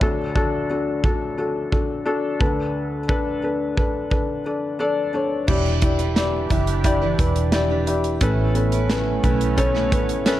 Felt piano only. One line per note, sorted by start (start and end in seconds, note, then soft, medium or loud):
0.00 2.37 D2 medium
0.00 2.37 D3 medium
0.00 0.31 D4 medium
0.00 0.31 F#4 medium
0.00 0.31 A4 loud
0.00 0.17 C#5 soft
0.00 0.17 E5 medium
0.35 0.65 D4 medium
0.35 0.65 F#4 medium
0.35 0.66 A4 medium
0.70 0.99 D4 medium
0.70 1.00 F#4 medium
0.70 1.00 A4 medium
1.04 1.33 D4 medium
1.04 1.34 F#4 medium
1.04 1.34 A4 medium
1.38 1.67 D4 medium
1.38 1.68 F#4 medium
1.38 1.68 A4 medium
1.72 2.02 D4 medium
1.72 2.02 F#4 medium
1.72 2.02 A4 medium
2.06 2.36 D4 medium
2.06 2.36 F#4 medium
2.06 2.36 A4 loud
2.39 5.10 D2 medium
2.39 5.10 D3 medium
2.39 2.99 D4 medium
2.39 2.99 A4 medium
2.39 3.00 B4 medium
3.08 3.38 D4 medium
3.08 3.38 A4 medium
3.08 3.39 B4 loud
3.43 3.73 D4 medium
3.43 3.73 A4 medium
3.43 3.73 B4 medium
3.77 4.06 D4 medium
3.77 4.07 A4 medium
3.77 4.07 B4 medium
4.10 4.40 D4 medium
4.10 4.41 A4 medium
4.10 4.41 B4 medium
4.45 4.75 D4 medium
4.45 4.75 A4 medium
4.45 4.76 D5 medium
4.79 5.09 D4 medium
4.79 5.09 A4 medium
4.79 5.10 D5 loud
5.13 5.43 D4 medium
5.13 5.44 A4 medium
5.13 5.44 C#5 medium
5.48 6.47 E3 medium
5.48 5.77 E4 medium
5.48 5.77 G4 medium
5.48 5.78 D5 medium
5.82 6.12 E4 medium
5.82 6.12 G4 medium
5.82 6.12 D5 medium
6.16 6.46 E4 medium
6.16 6.46 G4 medium
6.16 6.46 D5 medium
6.50 6.80 E4 medium
6.50 6.80 G4 medium
6.50 6.80 E5 medium
6.85 7.14 E4 medium
6.85 7.14 G4 medium
6.85 7.15 D5 loud
7.18 7.48 E4 medium
7.18 7.48 G4 medium
7.18 7.48 B4 medium
7.52 7.82 E4 medium
7.52 7.82 G4 medium
7.52 7.83 D5 loud
7.87 8.17 E4 medium
7.87 8.17 G4 medium
7.87 8.17 D5 medium
8.21 9.20 A2 medium
8.21 8.51 C#4 medium
8.21 8.51 A4 medium
8.21 8.51 B4 loud
8.55 8.85 C#4 medium
8.55 8.85 A4 medium
8.55 8.85 B4 medium
8.90 9.19 C#4 medium
8.90 9.19 A4 medium
8.90 9.20 B4 medium
9.23 9.53 C#4 medium
9.23 9.53 A4 medium
9.23 9.54 B4 medium
9.57 9.87 C#4 loud
9.57 9.87 A4 medium
9.57 9.88 C#5 loud
9.92 10.21 C#4 medium
9.92 10.22 A4 medium
9.92 10.22 B4 medium
10.26 10.40 C#4 loud
10.26 10.40 A4 loud
10.26 10.40 B4 loud